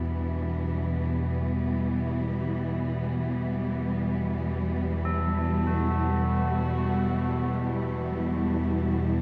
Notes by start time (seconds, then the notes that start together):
Already playing: E2 B2 E3 G3 B3 E4
0.06 D4
0.62 G3
1.31 E4
5.05 E4 A4
5.67 F#4
6.29 F#4
7.54 E4